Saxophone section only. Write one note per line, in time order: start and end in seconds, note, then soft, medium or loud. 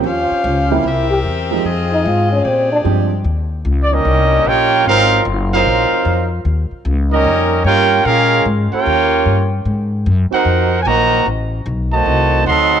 0.00 0.84 C#4 medium
0.00 0.81 C5 medium
0.04 0.84 G4 medium
0.04 0.84 F5 medium
0.85 3.23 C4 medium
0.85 1.64 G4 medium
0.85 1.64 A#4 medium
0.85 1.65 E5 medium
1.64 2.44 F4 medium
1.64 2.42 G#4 medium
1.64 2.44 D#5 medium
2.44 3.24 G4 medium
2.44 3.24 G#4 medium
2.44 3.24 D5 medium